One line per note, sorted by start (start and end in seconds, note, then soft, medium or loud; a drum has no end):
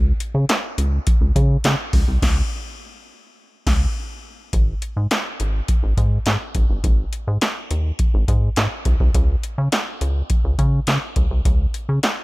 0.00 0.13 C#2 loud
0.20 closed hi-hat medium
0.35 0.45 C#3 loud
0.49 snare loud
0.49 clap medium
0.49 closed hi-hat loud
0.78 0.99 C#2 medium
0.78 closed hi-hat medium
1.07 kick loud
1.07 closed hi-hat medium
1.21 1.32 C#2 medium
1.36 1.57 C#3 loud
1.36 kick medium
1.36 closed hi-hat medium
1.64 1.75 C#3 loud
1.64 snare loud
1.64 clap medium
1.64 closed hi-hat medium
1.93 2.04 C#2 medium
1.93 kick loud
1.93 open hi-hat medium
2.08 2.19 C2 loud
2.22 2.42 C#2 loud
2.22 kick loud
2.22 snare loud
2.22 crash medium
3.67 3.86 C#2 loud
3.67 kick loud
3.67 snare loud
3.67 crash medium
4.53 4.74 G#1 loud
4.53 kick loud
4.53 closed hi-hat medium
4.82 closed hi-hat medium
4.97 5.07 G#2 medium
5.11 snare loud
5.11 clap medium
5.11 closed hi-hat loud
5.40 5.61 G#1 loud
5.40 closed hi-hat medium
5.68 kick loud
5.68 closed hi-hat medium
5.83 5.94 G#1 loud
5.97 6.19 G#2 loud
5.97 kick medium
5.97 closed hi-hat medium
6.26 6.37 G#2 medium
6.26 snare loud
6.26 clap medium
6.26 closed hi-hat medium
6.55 6.66 G#1 medium
6.55 kick medium
6.55 closed hi-hat medium
6.70 6.80 G1 medium
6.84 7.05 G#1 loud
6.84 kick loud
6.84 closed hi-hat medium
7.13 closed hi-hat medium
7.28 7.38 G#2 loud
7.41 snare loud
7.41 clap medium
7.41 closed hi-hat medium
7.71 7.92 D#2 medium
7.71 closed hi-hat medium
7.99 kick loud
7.99 closed hi-hat medium
8.14 8.25 G#1 loud
8.28 8.49 G#2 loud
8.28 kick medium
8.28 closed hi-hat medium
8.56 8.68 G#2 loud
8.56 snare loud
8.56 clap medium
8.56 closed hi-hat medium
8.85 8.96 C2 medium
8.85 kick medium
8.85 closed hi-hat medium
9.00 9.11 C2 loud
9.00 kick medium
9.15 9.36 C#2 loud
9.15 kick loud
9.15 closed hi-hat medium
9.43 closed hi-hat medium
9.58 9.69 C#3 medium
9.72 snare loud
9.72 clap medium
9.72 closed hi-hat medium
10.01 10.22 C#2 loud
10.01 closed hi-hat medium
10.30 kick loud
10.30 closed hi-hat medium
10.44 10.55 C#2 medium
10.59 10.80 C#3 loud
10.59 kick medium
10.59 closed hi-hat medium
10.87 10.98 C#3 loud
10.87 snare loud
10.87 clap medium
10.87 closed hi-hat medium
11.16 11.27 C#2 medium
11.16 kick medium
11.16 closed hi-hat medium
11.31 11.41 C2 medium
11.45 11.67 C#2 loud
11.45 kick loud
11.45 closed hi-hat medium
11.74 closed hi-hat medium
11.89 11.99 C#3 loud
12.03 snare loud
12.03 clap medium
12.03 closed hi-hat medium